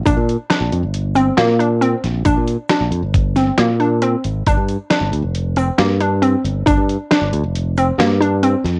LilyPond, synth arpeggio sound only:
\new Staff \with { instrumentName = "Synth arpeggio sound" } { \time 5/4 \key g \minor \tempo 4 = 136 d'4 d'4 r8 c'8 bes8 d'8 c'4 | d'4 d'4 r8 c'8 bes8 d'8 c'4 | d'4 d'4 r8 c'8 bes8 d'8 c'4 | d'4 d'4 r8 c'8 bes8 d'8 c'4 | }